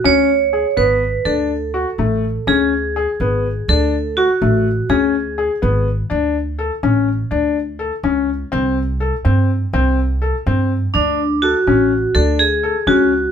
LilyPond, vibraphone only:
\new Staff \with { instrumentName = "Vibraphone" } { \time 5/8 \key d \lydian \tempo 4 = 124 cis''4. b'4 | a'2~ a'8 | gis'2~ gis'8 | a'4 fis'4. |
gis'2 r8 | r2 r8 | r2 r8 | r2 r8 |
r2 r8 | d'4 fis'4. | a'8 gis'4 fis'4 | }